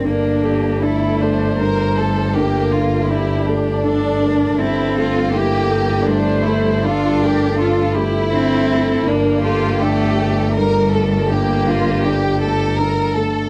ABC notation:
X:1
M:3/4
L:1/8
Q:1/4=80
K:Gdor
V:1 name="Viola"
B G A c3 | B2 G2 A B | A2 G2 c2 | A B A G A2 |
B G A2 B2 | G4 A2 |]
V:2 name="Violin section"
D2 E D B A | G F E D3 | E F G2 D E | F G F E3 |
D F G2 B A | G F G A B A |]
V:3 name="Cello"
B,2 A,2 G,2 | B,3 z D2 | C2 B,2 A,2 | D3 z C2 |
B,2 A,2 G,2 | B,3 z3 |]
V:4 name="Grand piano"
G,, A D A, D, A, | G,, D, D A, D, A, | G,, A, E A G, A, | G,, A, F A, D, A, |
G,, A D A, D, A, | G,, D, D A, D, A, |]
V:5 name="Double bass" clef=bass
G,,,6- | G,,,6 | G,,,6- | G,,,6 |
G,,,6- | G,,,6 |]